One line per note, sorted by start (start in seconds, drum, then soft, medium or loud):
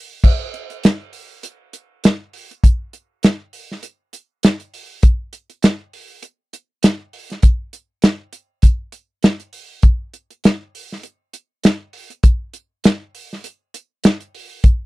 0.24 kick loud
0.24 crash medium
0.54 closed hi-hat medium
0.70 closed hi-hat soft
0.84 snare loud
0.84 closed hi-hat medium
1.13 open hi-hat medium
1.43 closed hi-hat medium
1.73 closed hi-hat medium
2.04 snare loud
2.04 closed hi-hat medium
2.33 open hi-hat medium
2.51 closed hi-hat soft
2.64 kick loud
2.64 closed hi-hat medium
2.93 closed hi-hat medium
3.23 snare loud
3.23 closed hi-hat medium
3.53 open hi-hat medium
3.71 snare soft
3.83 closed hi-hat medium
4.13 closed hi-hat medium
4.43 snare loud
4.43 closed hi-hat medium
4.60 closed hi-hat soft
4.74 open hi-hat medium
5.03 kick loud
5.03 closed hi-hat medium
5.33 closed hi-hat medium
5.50 closed hi-hat soft
5.63 snare loud
5.63 closed hi-hat medium
5.93 open hi-hat medium
6.23 closed hi-hat medium
6.53 closed hi-hat medium
6.83 snare loud
6.83 closed hi-hat medium
7.13 open hi-hat medium
7.30 snare soft
7.30 closed hi-hat soft
7.42 kick loud
7.42 closed hi-hat medium
7.73 closed hi-hat medium
8.02 snare loud
8.02 closed hi-hat medium
8.33 closed hi-hat medium
8.62 kick medium
8.62 closed hi-hat medium
8.92 closed hi-hat medium
9.23 snare loud
9.23 closed hi-hat medium
9.40 closed hi-hat soft
9.53 open hi-hat medium
9.83 kick medium
9.83 closed hi-hat medium
10.14 closed hi-hat medium
10.30 closed hi-hat soft
10.44 snare loud
10.44 closed hi-hat medium
10.75 open hi-hat medium
10.92 snare soft
11.03 closed hi-hat medium
11.33 closed hi-hat medium
11.64 snare loud
11.64 closed hi-hat medium
11.93 open hi-hat medium
12.10 closed hi-hat soft
12.23 kick loud
12.23 closed hi-hat medium
12.54 closed hi-hat medium
12.84 snare loud
12.84 closed hi-hat medium
13.15 open hi-hat medium
13.33 snare soft
13.44 closed hi-hat medium
13.74 closed hi-hat medium
14.04 snare loud
14.04 closed hi-hat medium
14.21 closed hi-hat soft
14.35 open hi-hat medium
14.64 kick loud
14.64 closed hi-hat medium